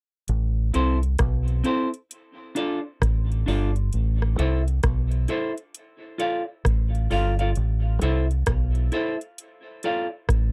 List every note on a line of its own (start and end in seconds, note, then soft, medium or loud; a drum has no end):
0.28 0.70 A1 loud
0.28 closed hi-hat medium
0.74 1.16 C2 medium
0.74 0.96 C4 medium
0.74 0.97 E4 medium
0.74 0.97 A4 medium
0.74 0.97 C5 medium
0.74 closed hi-hat medium
1.03 closed hi-hat soft
1.18 1.61 B1 medium
1.18 kick loud
1.18 cross-stick loud
1.18 closed hi-hat medium
1.48 closed hi-hat soft
1.64 1.87 C4 medium
1.64 1.88 E4 medium
1.64 1.88 A4 medium
1.64 1.88 C5 medium
1.64 closed hi-hat medium
1.94 closed hi-hat medium
2.11 closed hi-hat medium
2.55 2.78 D4 medium
2.55 2.78 F4 medium
2.55 2.79 A4 medium
2.55 2.79 D5 medium
2.55 closed hi-hat medium
3.02 3.43 A1 medium
3.02 kick loud
3.02 cross-stick medium
3.02 closed hi-hat medium
3.32 closed hi-hat medium
3.46 3.89 G1 medium
3.46 3.69 D4 medium
3.46 3.70 F4 medium
3.46 3.70 A4 medium
3.46 3.70 D5 medium
3.46 open hi-hat medium
3.76 closed hi-hat medium
3.93 4.35 A1 medium
3.93 closed hi-hat medium
4.22 cross-stick medium
4.38 4.80 C2 medium
4.38 4.60 E4 medium
4.38 4.61 A4 medium
4.38 4.61 C5 medium
4.38 4.61 E5 medium
4.38 closed hi-hat medium
4.68 closed hi-hat soft
4.83 5.25 B1 medium
4.83 kick loud
4.83 cross-stick loud
4.83 closed hi-hat medium
5.12 closed hi-hat soft
5.28 5.51 E4 medium
5.28 5.52 A4 medium
5.28 5.52 C5 medium
5.28 5.52 E5 medium
5.28 closed hi-hat medium
5.58 closed hi-hat medium
5.75 closed hi-hat medium
6.18 6.42 F4 medium
6.18 6.42 A4 medium
6.18 6.42 D5 medium
6.18 6.43 F5 medium
6.18 closed hi-hat medium
6.65 7.07 A1 medium
6.65 kick loud
6.65 cross-stick loud
6.65 closed hi-hat medium
6.95 closed hi-hat soft
7.11 7.53 G1 medium
7.11 7.33 F4 medium
7.11 7.33 A4 medium
7.11 7.34 D5 medium
7.11 7.34 F5 medium
7.11 open hi-hat medium
7.39 7.50 F4 medium
7.39 7.50 A4 medium
7.39 7.50 D5 medium
7.39 7.49 F5 medium
7.39 closed hi-hat soft
7.55 7.98 A1 medium
7.55 closed hi-hat medium
8.02 8.44 C2 medium
8.02 8.24 E4 medium
8.02 8.24 A4 medium
8.02 8.25 C5 medium
8.02 8.25 E5 medium
8.02 closed hi-hat medium
8.31 closed hi-hat soft
8.46 8.89 B1 medium
8.46 kick loud
8.46 cross-stick loud
8.46 closed hi-hat medium
8.75 closed hi-hat soft
8.92 9.15 E4 medium
8.92 9.15 A4 medium
8.92 9.16 C5 medium
8.92 9.16 E5 medium
8.92 closed hi-hat medium
9.21 closed hi-hat medium
9.38 closed hi-hat medium
9.83 10.06 F4 medium
9.83 10.07 A4 medium
9.83 10.07 D5 medium
9.83 10.07 F5 medium
9.83 closed hi-hat medium
10.29 10.52 A1 medium
10.29 kick loud
10.29 cross-stick loud
10.29 closed hi-hat medium